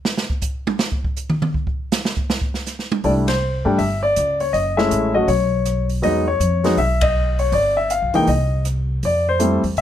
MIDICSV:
0, 0, Header, 1, 4, 480
1, 0, Start_track
1, 0, Tempo, 374065
1, 63, Time_signature, 4, 2, 24, 8
1, 12588, End_track
2, 0, Start_track
2, 0, Title_t, "Grand piano"
2, 0, Program_c, 0, 0
2, 3901, Note_on_c, 0, 55, 48
2, 3904, Note_on_c, 0, 74, 68
2, 3905, Note_on_c, 0, 57, 42
2, 3908, Note_on_c, 0, 62, 46
2, 3917, Note_on_c, 0, 64, 52
2, 3972, Note_off_c, 0, 74, 0
2, 4175, Note_off_c, 0, 55, 0
2, 4177, Note_off_c, 0, 57, 0
2, 4178, Note_off_c, 0, 62, 0
2, 4182, Note_off_c, 0, 64, 0
2, 4207, Note_on_c, 0, 72, 72
2, 4652, Note_off_c, 0, 72, 0
2, 4682, Note_on_c, 0, 55, 60
2, 4685, Note_on_c, 0, 57, 57
2, 4691, Note_on_c, 0, 62, 56
2, 4699, Note_on_c, 0, 67, 63
2, 4840, Note_off_c, 0, 55, 0
2, 4841, Note_off_c, 0, 57, 0
2, 4844, Note_off_c, 0, 62, 0
2, 4848, Note_off_c, 0, 67, 0
2, 4855, Note_on_c, 0, 76, 74
2, 5141, Note_off_c, 0, 76, 0
2, 5166, Note_on_c, 0, 74, 86
2, 5611, Note_off_c, 0, 74, 0
2, 5652, Note_on_c, 0, 73, 71
2, 5813, Note_on_c, 0, 75, 78
2, 5828, Note_off_c, 0, 73, 0
2, 6124, Note_on_c, 0, 56, 65
2, 6124, Note_on_c, 0, 76, 78
2, 6127, Note_on_c, 0, 57, 61
2, 6130, Note_off_c, 0, 75, 0
2, 6134, Note_on_c, 0, 61, 55
2, 6141, Note_on_c, 0, 64, 69
2, 6571, Note_off_c, 0, 76, 0
2, 6573, Note_off_c, 0, 56, 0
2, 6575, Note_off_c, 0, 57, 0
2, 6578, Note_off_c, 0, 61, 0
2, 6582, Note_off_c, 0, 64, 0
2, 6602, Note_on_c, 0, 57, 54
2, 6602, Note_on_c, 0, 75, 80
2, 6603, Note_on_c, 0, 54, 55
2, 6608, Note_on_c, 0, 61, 59
2, 6616, Note_on_c, 0, 66, 62
2, 6760, Note_off_c, 0, 57, 0
2, 6761, Note_off_c, 0, 54, 0
2, 6763, Note_off_c, 0, 61, 0
2, 6765, Note_off_c, 0, 75, 0
2, 6767, Note_off_c, 0, 66, 0
2, 6777, Note_on_c, 0, 73, 75
2, 7512, Note_off_c, 0, 73, 0
2, 7727, Note_on_c, 0, 54, 61
2, 7728, Note_on_c, 0, 56, 54
2, 7732, Note_on_c, 0, 59, 59
2, 7742, Note_on_c, 0, 75, 84
2, 7743, Note_on_c, 0, 63, 65
2, 8008, Note_off_c, 0, 54, 0
2, 8008, Note_off_c, 0, 56, 0
2, 8011, Note_off_c, 0, 59, 0
2, 8016, Note_off_c, 0, 63, 0
2, 8025, Note_off_c, 0, 75, 0
2, 8052, Note_on_c, 0, 73, 80
2, 8518, Note_on_c, 0, 54, 65
2, 8526, Note_on_c, 0, 56, 62
2, 8530, Note_on_c, 0, 59, 64
2, 8539, Note_on_c, 0, 63, 72
2, 8658, Note_off_c, 0, 73, 0
2, 8679, Note_off_c, 0, 54, 0
2, 8683, Note_off_c, 0, 56, 0
2, 8685, Note_off_c, 0, 59, 0
2, 8689, Note_off_c, 0, 63, 0
2, 8703, Note_on_c, 0, 76, 80
2, 9009, Note_on_c, 0, 75, 83
2, 9017, Note_off_c, 0, 76, 0
2, 9454, Note_off_c, 0, 75, 0
2, 9485, Note_on_c, 0, 73, 74
2, 9648, Note_off_c, 0, 73, 0
2, 9666, Note_on_c, 0, 74, 86
2, 9948, Note_off_c, 0, 74, 0
2, 9969, Note_on_c, 0, 76, 79
2, 10147, Note_off_c, 0, 76, 0
2, 10147, Note_on_c, 0, 77, 75
2, 10429, Note_off_c, 0, 77, 0
2, 10442, Note_on_c, 0, 52, 63
2, 10452, Note_on_c, 0, 56, 51
2, 10457, Note_on_c, 0, 58, 57
2, 10457, Note_on_c, 0, 63, 67
2, 10464, Note_on_c, 0, 79, 84
2, 10602, Note_off_c, 0, 52, 0
2, 10607, Note_off_c, 0, 56, 0
2, 10609, Note_off_c, 0, 58, 0
2, 10609, Note_off_c, 0, 63, 0
2, 10618, Note_off_c, 0, 79, 0
2, 10629, Note_on_c, 0, 75, 67
2, 11072, Note_off_c, 0, 75, 0
2, 11614, Note_on_c, 0, 74, 80
2, 11913, Note_off_c, 0, 74, 0
2, 11918, Note_on_c, 0, 72, 83
2, 12052, Note_on_c, 0, 55, 57
2, 12057, Note_on_c, 0, 57, 50
2, 12060, Note_on_c, 0, 60, 51
2, 12065, Note_on_c, 0, 64, 58
2, 12333, Note_off_c, 0, 55, 0
2, 12335, Note_off_c, 0, 57, 0
2, 12337, Note_off_c, 0, 60, 0
2, 12339, Note_off_c, 0, 64, 0
2, 12351, Note_off_c, 0, 72, 0
2, 12550, Note_on_c, 0, 76, 83
2, 12588, Note_off_c, 0, 76, 0
2, 12588, End_track
3, 0, Start_track
3, 0, Title_t, "Upright bass"
3, 0, Program_c, 1, 32
3, 3897, Note_on_c, 1, 36, 65
3, 4632, Note_off_c, 1, 36, 0
3, 4685, Note_on_c, 1, 43, 66
3, 4846, Note_off_c, 1, 43, 0
3, 4860, Note_on_c, 1, 31, 75
3, 5306, Note_off_c, 1, 31, 0
3, 5345, Note_on_c, 1, 37, 72
3, 5788, Note_off_c, 1, 37, 0
3, 5818, Note_on_c, 1, 30, 70
3, 6265, Note_off_c, 1, 30, 0
3, 6295, Note_on_c, 1, 33, 74
3, 6743, Note_off_c, 1, 33, 0
3, 6771, Note_on_c, 1, 35, 77
3, 7687, Note_off_c, 1, 35, 0
3, 7735, Note_on_c, 1, 40, 80
3, 8184, Note_off_c, 1, 40, 0
3, 8211, Note_on_c, 1, 41, 73
3, 8661, Note_off_c, 1, 41, 0
3, 8691, Note_on_c, 1, 35, 76
3, 9608, Note_off_c, 1, 35, 0
3, 9649, Note_on_c, 1, 31, 76
3, 10250, Note_off_c, 1, 31, 0
3, 10296, Note_on_c, 1, 34, 56
3, 10447, Note_off_c, 1, 34, 0
3, 10461, Note_on_c, 1, 37, 64
3, 10610, Note_off_c, 1, 37, 0
3, 10617, Note_on_c, 1, 36, 80
3, 11532, Note_off_c, 1, 36, 0
3, 11587, Note_on_c, 1, 41, 73
3, 12320, Note_off_c, 1, 41, 0
3, 12363, Note_on_c, 1, 40, 64
3, 12528, Note_off_c, 1, 40, 0
3, 12541, Note_on_c, 1, 36, 77
3, 12588, Note_off_c, 1, 36, 0
3, 12588, End_track
4, 0, Start_track
4, 0, Title_t, "Drums"
4, 65, Note_on_c, 9, 38, 103
4, 193, Note_off_c, 9, 38, 0
4, 225, Note_on_c, 9, 38, 94
4, 354, Note_off_c, 9, 38, 0
4, 383, Note_on_c, 9, 36, 76
4, 511, Note_off_c, 9, 36, 0
4, 534, Note_on_c, 9, 44, 58
4, 542, Note_on_c, 9, 36, 82
4, 663, Note_off_c, 9, 44, 0
4, 670, Note_off_c, 9, 36, 0
4, 861, Note_on_c, 9, 48, 104
4, 989, Note_off_c, 9, 48, 0
4, 1016, Note_on_c, 9, 38, 104
4, 1144, Note_off_c, 9, 38, 0
4, 1180, Note_on_c, 9, 36, 80
4, 1309, Note_off_c, 9, 36, 0
4, 1341, Note_on_c, 9, 36, 90
4, 1469, Note_off_c, 9, 36, 0
4, 1495, Note_on_c, 9, 44, 53
4, 1624, Note_off_c, 9, 44, 0
4, 1663, Note_on_c, 9, 47, 96
4, 1791, Note_off_c, 9, 47, 0
4, 1822, Note_on_c, 9, 47, 103
4, 1951, Note_off_c, 9, 47, 0
4, 1981, Note_on_c, 9, 36, 80
4, 2109, Note_off_c, 9, 36, 0
4, 2142, Note_on_c, 9, 36, 84
4, 2270, Note_off_c, 9, 36, 0
4, 2461, Note_on_c, 9, 44, 68
4, 2466, Note_on_c, 9, 38, 110
4, 2589, Note_off_c, 9, 44, 0
4, 2595, Note_off_c, 9, 38, 0
4, 2634, Note_on_c, 9, 38, 106
4, 2762, Note_off_c, 9, 38, 0
4, 2783, Note_on_c, 9, 36, 80
4, 2911, Note_off_c, 9, 36, 0
4, 2948, Note_on_c, 9, 38, 104
4, 3076, Note_off_c, 9, 38, 0
4, 3100, Note_on_c, 9, 36, 78
4, 3228, Note_off_c, 9, 36, 0
4, 3262, Note_on_c, 9, 38, 57
4, 3390, Note_off_c, 9, 38, 0
4, 3418, Note_on_c, 9, 44, 58
4, 3423, Note_on_c, 9, 38, 36
4, 3546, Note_off_c, 9, 44, 0
4, 3551, Note_off_c, 9, 38, 0
4, 3581, Note_on_c, 9, 38, 49
4, 3709, Note_off_c, 9, 38, 0
4, 3742, Note_on_c, 9, 48, 109
4, 3871, Note_off_c, 9, 48, 0
4, 3900, Note_on_c, 9, 46, 37
4, 4028, Note_off_c, 9, 46, 0
4, 4207, Note_on_c, 9, 51, 59
4, 4212, Note_on_c, 9, 38, 73
4, 4335, Note_off_c, 9, 51, 0
4, 4341, Note_off_c, 9, 38, 0
4, 4861, Note_on_c, 9, 46, 44
4, 4989, Note_off_c, 9, 46, 0
4, 5344, Note_on_c, 9, 42, 50
4, 5349, Note_on_c, 9, 37, 53
4, 5472, Note_off_c, 9, 42, 0
4, 5477, Note_off_c, 9, 37, 0
4, 5650, Note_on_c, 9, 46, 36
4, 5778, Note_off_c, 9, 46, 0
4, 5827, Note_on_c, 9, 46, 41
4, 5956, Note_off_c, 9, 46, 0
4, 6135, Note_on_c, 9, 38, 47
4, 6264, Note_off_c, 9, 38, 0
4, 6304, Note_on_c, 9, 42, 52
4, 6433, Note_off_c, 9, 42, 0
4, 6779, Note_on_c, 9, 46, 42
4, 6907, Note_off_c, 9, 46, 0
4, 7257, Note_on_c, 9, 42, 48
4, 7262, Note_on_c, 9, 37, 53
4, 7386, Note_off_c, 9, 42, 0
4, 7391, Note_off_c, 9, 37, 0
4, 7564, Note_on_c, 9, 46, 37
4, 7693, Note_off_c, 9, 46, 0
4, 7741, Note_on_c, 9, 46, 40
4, 7870, Note_off_c, 9, 46, 0
4, 8222, Note_on_c, 9, 42, 54
4, 8350, Note_off_c, 9, 42, 0
4, 8525, Note_on_c, 9, 46, 37
4, 8530, Note_on_c, 9, 38, 47
4, 8653, Note_off_c, 9, 46, 0
4, 8658, Note_off_c, 9, 38, 0
4, 8694, Note_on_c, 9, 46, 41
4, 8823, Note_off_c, 9, 46, 0
4, 8998, Note_on_c, 9, 51, 70
4, 9003, Note_on_c, 9, 36, 78
4, 9126, Note_off_c, 9, 51, 0
4, 9131, Note_off_c, 9, 36, 0
4, 9481, Note_on_c, 9, 46, 35
4, 9609, Note_off_c, 9, 46, 0
4, 9654, Note_on_c, 9, 46, 40
4, 9782, Note_off_c, 9, 46, 0
4, 10139, Note_on_c, 9, 42, 53
4, 10267, Note_off_c, 9, 42, 0
4, 10443, Note_on_c, 9, 46, 35
4, 10571, Note_off_c, 9, 46, 0
4, 10617, Note_on_c, 9, 46, 43
4, 10746, Note_off_c, 9, 46, 0
4, 11101, Note_on_c, 9, 42, 51
4, 11106, Note_on_c, 9, 37, 51
4, 11229, Note_off_c, 9, 42, 0
4, 11234, Note_off_c, 9, 37, 0
4, 11586, Note_on_c, 9, 46, 41
4, 11714, Note_off_c, 9, 46, 0
4, 12061, Note_on_c, 9, 42, 55
4, 12189, Note_off_c, 9, 42, 0
4, 12367, Note_on_c, 9, 46, 36
4, 12496, Note_off_c, 9, 46, 0
4, 12535, Note_on_c, 9, 46, 43
4, 12588, Note_off_c, 9, 46, 0
4, 12588, End_track
0, 0, End_of_file